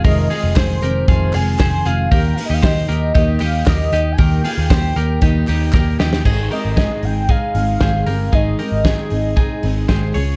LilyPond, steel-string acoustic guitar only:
\new Staff \with { instrumentName = "Steel-string acoustic guitar" } { \time 4/4 \key aes \major \tempo 4 = 116 <f, c ees aes c' aes'>8 <ees aes c' aes'>8 <ees aes c' aes'>8 <ees aes c' aes'>8 <f, c ees aes c' aes'>8 <ees aes c' aes'>8 <ees aes c' aes'>8 <ees aes c' aes'>8 | <ees g bes ees' g'>8 <bes ees' g'>8 <g bes ees' g'>8 <bes ees' g'>8 <ees g bes ees' g'>8 <bes ees' g'>8 <g bes ees' g'>8 <bes ees' g'>8 | <ees g bes ees' g'>8 <bes ees' g'>8 <g bes ees' g'>8 <bes ees' g'>8 <ees g bes ees' g'>8 <bes ees' g'>8 <g bes ees' g'>8 <bes ees' g'>8 | <aes, ees aes c' ees' aes'>8 <aes c' ees' aes'>8 <aes, ees aes c' ees' aes'>8 <aes c' ees' aes'>8 <aes c' ees' aes'>8 <aes c' ees' aes'>8 <aes, ees aes c' ees' aes'>8 <aes c' ees' aes'>8 |
<aes, ees aes c' ees' aes'>8 <aes c' ees' aes'>8 <aes, ees aes c' ees' aes'>8 <aes c' ees' aes'>8 <aes c' ees' aes'>8 <aes c' ees' aes'>8 <aes, ees aes c' ees' aes'>8 <des' f' aes'>8 | }